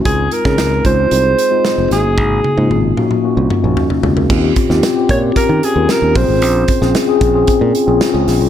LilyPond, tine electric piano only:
\new Staff \with { instrumentName = "Tine electric piano" } { \time 4/4 \key ees \dorian \tempo 4 = 113 << { r1 | r2. r16 <bes ges'>16 <c' aes'>16 <des' bes'>16~ | <des' bes'>16 r2. r8. | r1 | } \\ { <aes ees' f'>8 r16 <aes c' ees' aes'>8 r16 <aes c' ees' f'>16 r16 <aes c' ees' aes'>8 r16 <aes c' ees' f'>8 r16 <bes des' ees' ges'>8~ | <bes des' ees' ges'>8 r16 <bes des' ees' f'>8 r16 <bes des' ees' ges'>16 r16 <bes des' ees' ges'>8 r16 <bes des' ees' ges'>16 r4 | <c' des' f' g'>8 r16 <c' des' f' g'>16 r16 <c' des' f' g'>16 r16 <c' des' f' g'>8 r8 <c' des' f' bes'>16 r16 <c' des' f' g'>16 <c' des' f' aes'>8~ | <c' des' f' aes'>8 r16 <c' des' f' aes'>16 r16 <c' des' f' aes'>16 r16 <c' des' f' aes'>8 r8 <c' des' f' aes'>16 r16 <c' des' f' aes'>8 r16 | } >> }